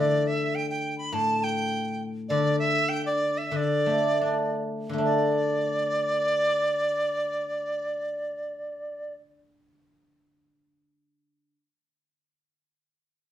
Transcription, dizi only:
0.00 D5
0.27 E5
0.55 G5
0.70 G5
0.98 B5
1.13 A5
1.43 G5
2.29 D5
2.59 E5
2.89 G5
3.06 D5
3.38 E5
3.56 D5
5.04 D5

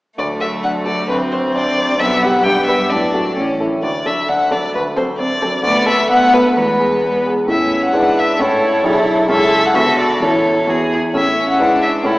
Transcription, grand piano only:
0.18 D2
0.41 A4
0.64 D4
0.86 A4
1.09 D2
1.32 C5
1.55 D4
1.77 C5
2.00 B1
2.24 G4 B4
2.46 G2
2.68 G4 B4
2.92 A2
3.14 F#4 A4
3.37 A2
3.60 E4 A4
3.83 D2
4.06 A4
4.29 D4
4.51 A4
4.75 D2
4.97 A4
5.20 C4
5.42 A4
5.63 D2
5.86 A4
6.10 B3
6.34 A4
6.57 E2
6.80 G#4
7.04 B3
7.26 G#4
7.46 A2 C#4 E4 A4
7.92 G#2 D4 E4 B4
8.39 A2 C#4 E4 A4
8.83 B1 D4 E4 G#4
9.28 C#2 C#4 E4 A4
9.74 D2 B3 F#4 A4
10.20 E2 C#4 E4 A4
10.67 E2 B3 E4 G#4
11.13 A2 C#4 E4 A4
11.59 G#2 D4 E4 B4
12.03 A2 C#4 E4 A4

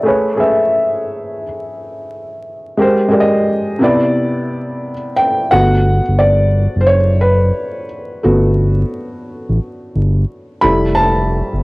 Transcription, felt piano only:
0.03 A3 G#4 B4
0.08 C#5
0.35 A3 G#4 B4
0.40 E5
2.77 G#3 G4 A#4
2.82 C5
3.08 G#3 G4 A#4
3.13 D5
3.20 D#5
3.79 C3 B3 E4
3.84 D5
5.16 G5
5.51 A3 B3 F#4 F#5
6.19 D5
6.81 C5
6.86 C#5
7.21 B4
8.23 A3 B3 F#4
10.61 G3 A3 E4 B5
10.95 A5

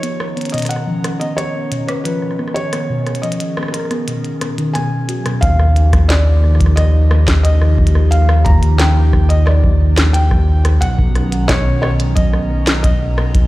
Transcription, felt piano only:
Already playing: C#5
0.52 D#5
0.69 F#5
1.20 D#5
1.37 C#5
1.87 B4
2.04 B4
2.54 C#5
3.22 D#5
3.72 A#4
4.73 G#5
5.41 F5
6.08 D5
6.76 D#5
7.43 D#5
8.11 F5
8.45 A#5
8.78 G5
9.29 D#5
9.46 D5
10.13 G5
10.81 F#5
11.48 C#5
11.82 C#5
12.15 D#5
12.83 D#5

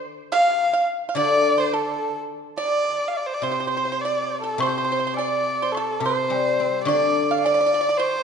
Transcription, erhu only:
0.32 F5
1.17 D5
1.60 C5
1.74 A4
2.60 D5
3.08 F5
3.17 D5
3.26 C5
3.34 D5
3.43 C5
3.71 C5
4.01 D5
4.42 A4
4.60 C5
5.17 D5
5.72 A4
6.00 C5
6.84 D5
7.41 D5
7.98 C5

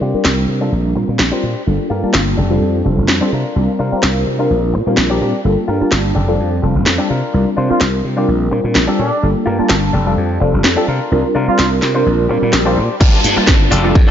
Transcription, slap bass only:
0.01 C3
0.14 muted slap bass stroke
0.25 C2
0.49 C3
0.72 A#1
0.96 A#2
1.09 A#2
1.20 A#1
1.43 A#2
1.67 G1
1.91 G2
2.03 muted slap bass stroke
2.14 G1
2.38 F1
2.62 F2
2.85 F1
2.98 F1
3.09 F2
3.33 C3
3.56 C2
3.80 C3
3.92 muted slap bass stroke
4.03 C2
4.27 C3
4.51 A#1
4.74 A#2
4.87 A#2
4.98 A#1
5.21 A#2
5.45 G1
5.68 G2
5.81 muted slap bass stroke
5.92 G1
6.16 F1
6.40 F2
6.63 F1
6.76 F1
6.87 F2
7.11 C3
7.34 C2
7.58 C3
7.70 muted slap bass stroke
7.81 C2
8.05 C3
8.28 A#1
8.52 A#2
8.64 A#2
8.76 A#1
8.99 A#2
9.23 G1
9.47 G2
9.59 muted slap bass stroke
9.70 G1
9.94 F1
10.17 F2
10.41 F1
10.54 F1
10.65 F2
10.88 C3
11.12 C2
11.35 C3
11.48 muted slap bass stroke
11.59 C2
11.83 C3
12.06 A#1
12.30 A#2
12.42 A#2
12.53 A#1
12.77 A#2
13.01 G1
13.24 G2
13.37 muted slap bass stroke
13.48 G1
13.72 F1
13.95 F2

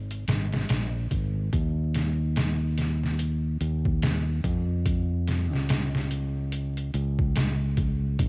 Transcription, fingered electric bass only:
Already playing: G#1
0.28 G#1
0.69 A#1
1.11 G#1
1.53 D#2
3.61 D#2
4.44 F2
5.52 C#2
6.94 C#2
8.19 A#1

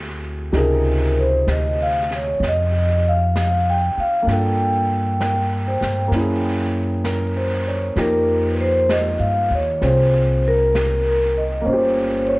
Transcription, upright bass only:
Already playing: D2
0.53 C#2
1.47 D2
2.40 F2
3.98 muted upright bass stroke
4.27 G2
5.81 G2
6.11 F#2
7.96 F2
9.19 G2
9.50 D#2
9.81 C2
11.67 G1

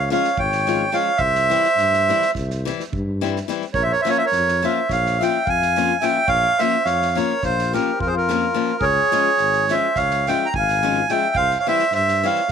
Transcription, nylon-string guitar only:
0.10 F3 G#3 C#4 F4
0.67 F3 G#3 C#4 F4
0.92 F3 G#3 C#4 F4
1.50 E3 G3 C4 E4
2.09 E3 G3 C4 E4
2.65 E3 G3 C4 E4
3.21 E3 G3 C4 E4
3.48 E3 G3 C4 E4
4.05 F3 A#3 C#4 F4
4.62 F3 A#3 C#4 F4
5.21 F3 A#3 C#4 F4
5.76 F3 A#3 C#4 F4
6.02 F3 A#3 C#4 F4
6.59 F3 A#3 C#4 F4
7.15 F3 A#3 C#4 F4
7.73 F3 A#3 C#4 F4
8.29 F3 A#3 C#4 F4
8.54 F3 A#3 C#4 F4
9.12 F3 G#3 C#4 F4
9.69 F3 G#3 C#4 F4
10.27 F3 G#3 C#4 F4
10.83 F3 G#3 C#4 F4
11.10 F3 G#3 C#4 F4
11.67 E3 G3 C4 E4
12.24 E3 G3 C4 E4

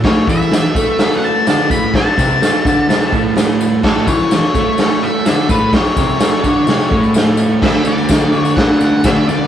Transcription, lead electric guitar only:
0.05 C#5
0.30 E5
1.00 E5
1.17 F#5
1.24 A5
1.48 A5
1.71 B5
1.96 A5
3.84 A4
4.07 C#5
4.80 C#5
5.03 E5
5.28 E5
5.50 B4
5.75 C#5
7.63 E5
7.87 D5
8.34 C#5
8.56 F#5
8.82 F#5
9.04 E5
9.29 D5

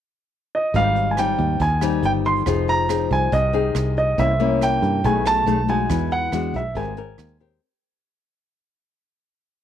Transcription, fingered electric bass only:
0.74 G#1
1.39 D#2
1.60 D#2
2.03 G1
2.46 F1
3.11 C2
3.32 C2
3.75 C2
4.18 C2
4.82 G2
5.04 B1
5.46 B1
5.90 E2
6.32 E2
6.54 B1
6.75 G#1
7.18 D#2

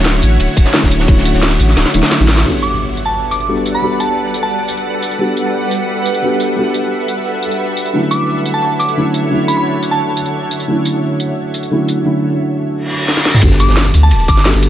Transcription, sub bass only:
Already playing: D1
0.23 A1
0.40 D1
0.57 D1
0.83 D1
1.08 D1
1.34 D1
1.60 A1
1.77 D1
1.94 D1
2.20 A1
13.43 G1
13.69 G1
13.94 D2
14.11 D1
14.28 G1
14.54 G1

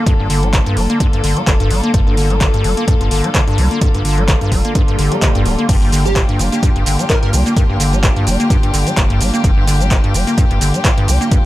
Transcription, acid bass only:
0.06 G2
0.19 G2
0.30 D3
0.43 G3
0.53 D3
0.66 G2
0.77 G3
0.90 A#3
1.00 G2
1.13 G2
1.24 D3
1.37 G3
1.47 D3
1.60 G2
1.71 G3
1.83 A#3
1.94 G2
2.07 G2
2.17 D3
2.30 G3
2.41 D3
2.54 G2
2.64 G3
2.77 A#3
2.88 G2
3.01 G2
3.11 D3
3.24 G3
3.35 D3
3.48 G2
3.58 G3
3.71 A#3
3.81 G2
3.94 G2
4.05 D3
4.18 G3
4.28 D3
4.41 G2
4.52 G3
4.65 A#3
4.75 G2
4.88 G2
4.99 D3
5.12 G3
5.22 D3
5.35 G2
5.45 G3
5.59 A#3
5.69 G2
5.82 G2
5.93 D3
6.05 G3
6.16 A2
6.29 G2
6.39 G3
6.52 A#3
6.63 G2
6.76 G2
6.86 D3
6.99 G3
7.10 A2
7.23 G2
7.33 G3
7.46 A#3
7.56 G2
7.70 G2
7.80 D3
7.93 G3
8.03 A2
8.16 G2
8.27 G3
8.40 A#3
8.50 G2
8.63 G2
8.74 D3
8.87 G3
8.97 A2
9.10 G2
9.20 G3
9.34 A#3
9.44 G2
9.57 G2
9.67 D3
9.80 G3
9.91 A2
10.04 G2
10.14 G3
10.27 A#3
10.38 G2
10.51 G2
10.61 D3
10.74 G3
10.85 A2
10.98 G2
11.08 G3
11.21 A#3
11.31 G2

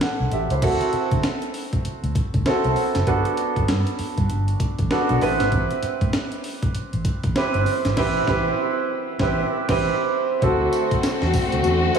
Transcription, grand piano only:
Already playing: B3 C4 E4 G4 B4 D5
0.02 A4 F#5
0.33 G4 E5
0.51 E4 C5
0.62 C4 E4 F#4 A4
2.46 C4 E4 F#4 A4
3.07 B3 D4 F#4 A4
4.91 B3 D4 F#4 A4
5.21 B3 E4 G4 B4
5.28 C4
7.36 C4 E4 G4 B4
7.97 C4 E4 G4 B4
8.28 C4 E4 G4 B4
9.20 C4 E4 G4 B4
9.69 C4 E4 G4 B4
10.42 C4 E4 F#4 A4
11.95 C4 E4 F#4

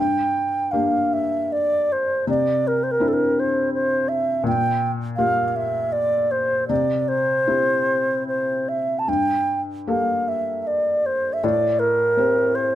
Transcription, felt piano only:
Already playing: G2
0.73 A#3 D4 G4
2.27 C3
3.00 C4 D4 E4
4.44 A#2
5.18 A#3 F4 G4
6.69 C3
7.47 C4 E4 G4
9.08 G2
9.87 A#3 G4 A4
11.44 A2
12.17 C4 G4 C5

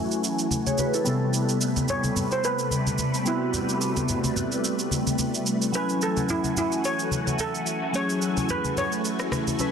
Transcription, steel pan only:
1.90 C#5
2.32 C5
2.45 B4
3.27 E4
5.75 B4
6.03 A4
6.30 E4
6.58 E4
6.85 C#5
7.41 A4
7.95 C#5
8.50 B4
8.78 C#5

